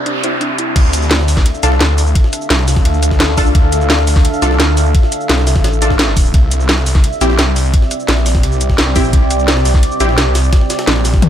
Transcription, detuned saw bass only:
0.76 1.27 D2 medium
1.28 1.44 D2 loud
1.63 1.79 C2 medium
1.81 2.14 D2 loud
2.50 2.84 C2 loud
2.85 3.36 D2 loud
3.38 3.54 C2 medium
3.55 4.06 D2 loud
4.07 4.23 D2 loud
4.42 4.58 C2 loud
4.60 4.93 D2 loud
5.29 5.63 C2 loud
5.64 6.33 A1 loud
6.34 6.85 C2 loud
6.86 7.02 C2 loud
7.21 7.37 A#1 loud
7.39 7.72 C2 loud
8.08 8.42 A#1 loud
8.43 8.94 C2 medium
8.96 9.12 A#1 medium
9.13 9.64 C2 loud
9.65 9.81 C2 loud
10.00 10.16 A#1 loud
10.18 10.51 C2 loud
10.87 11.21 A#1 medium
11.22 11.29 C2 loud

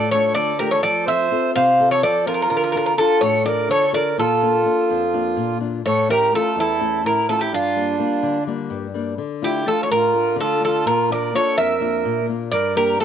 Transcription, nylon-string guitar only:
0.00 0.34 A2 medium
0.14 0.51 A3 soft
0.14 0.51 D4 soft
0.14 0.51 F4 medium
0.36 0.82 D3 medium
0.61 0.79 A3 soft
0.61 0.79 D4 soft
0.61 0.80 F4 medium
0.84 1.30 F3 medium
1.07 1.30 C4 soft
1.07 1.31 A4 medium
1.31 1.70 C4 medium
1.31 1.70 F4 soft
1.31 1.70 A4 medium
1.56 2.02 C3 medium
1.80 2.18 C4 medium
1.80 2.18 F4 soft
1.80 2.18 A4 medium
2.03 2.49 F3 medium
2.26 2.45 C4 soft
2.26 2.46 F4 soft
2.26 2.46 A4 medium
2.51 2.97 D3 medium
2.75 2.96 D4 soft
2.75 2.97 F4 soft
2.75 2.97 A4 medium
2.97 3.36 D4 medium
2.97 3.36 F4 soft
2.97 3.36 A4 medium
3.22 3.68 A2 medium
3.45 3.83 D4 medium
3.45 3.84 F4 soft
3.45 3.84 A4 medium
3.69 4.16 D3 medium
3.92 4.12 D4 soft
3.92 4.13 F4 soft
3.92 4.13 A4 medium
4.18 4.64 A#2 medium
4.42 4.65 A#3 medium
4.42 4.64 D4 soft
4.42 4.65 F4 medium
4.66 5.04 A#3 soft
4.66 5.04 D4 soft
4.66 5.04 F4 medium
4.90 5.36 F2 medium
5.13 5.52 A#3 soft
5.13 5.52 D4 soft
5.13 5.52 F4 medium
5.37 5.83 A#2 medium
5.60 5.80 A#3 soft
5.60 5.80 D4 soft
5.60 5.80 F4 medium
5.85 6.32 A2 medium
6.08 6.32 A3 soft
6.08 6.32 C#4 soft
6.08 6.33 E4 medium
6.33 6.71 A3 soft
6.33 6.71 C#4 soft
6.33 6.72 E4 medium
6.56 7.03 E2 medium
6.80 7.19 A3 soft
6.80 7.19 C#4 soft
6.80 7.19 E4 medium
7.04 7.50 A2 medium
7.29 7.48 A3 soft
7.29 7.48 C#4 soft
7.29 7.48 E4 soft
7.53 7.99 G2 medium
7.76 7.98 G3 soft
7.76 7.98 A#3 soft
7.76 7.99 D4 medium
7.99 8.38 G3 soft
7.99 8.38 A#3 soft
7.99 8.38 D4 medium
8.23 8.70 D3 medium
8.47 8.85 G3 soft
8.47 8.86 A#3 soft
8.47 8.86 D4 medium
8.70 9.17 G2 medium
8.94 9.14 G3 soft
8.94 9.14 A#3 soft
8.94 9.14 D4 medium
9.18 9.65 D3 medium
9.42 9.65 A3 soft
9.42 9.65 D4 soft
9.42 9.66 F4 medium
9.66 10.05 A3 soft
9.66 10.05 D4 soft
9.66 10.05 F4 medium
9.90 10.37 A2 medium
10.14 10.52 A3 soft
10.14 10.52 D4 soft
10.14 10.53 F4 medium
10.36 10.84 D3 medium
10.60 10.80 A3 soft
10.60 10.80 D4 soft
10.60 10.81 F4 soft
10.86 11.32 A#2 medium
11.10 11.33 A#3 soft
11.10 11.33 D4 soft
11.10 11.33 F4 medium
11.34 11.72 A#3 soft
11.34 11.73 D4 soft
11.34 11.72 F4 medium
11.58 12.04 F2 medium
11.80 12.19 A#3 soft
11.80 12.20 D4 soft
11.80 12.20 F4 medium
12.05 12.52 A#2 medium
12.29 12.48 A#3 soft
12.29 12.48 D4 soft
12.29 12.49 F4 soft
12.52 12.99 G2 medium
12.76 12.99 G3 soft
12.76 12.99 A#3 soft
12.76 13.00 D4 medium
13.00 13.05 G3 soft
13.00 13.05 A#3 soft
13.00 13.05 D4 soft

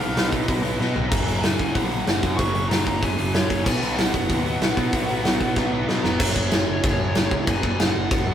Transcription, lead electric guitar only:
0.00 0.30 F5 medium
0.30 0.61 D#5 medium
0.62 0.76 D#5 medium
0.78 1.11 D#5 medium
1.09 1.43 A#5 loud
1.42 1.73 G#5 loud
1.74 2.03 F#5 medium
2.04 2.35 F#5 loud
2.37 2.68 C#6 loud
2.69 2.84 A#5 loud
2.85 3.02 A#5 medium
3.01 3.34 G#5 loud
3.33 3.67 C#5 loud
3.64 3.95 G#5 loud
3.96 4.10 F#5 loud
4.11 5.83 F#5 loud
6.03 6.48 A#5 medium
6.20 7.43 C#5 medium
7.49 7.80 G#5 loud
7.81 8.34 F#5 loud

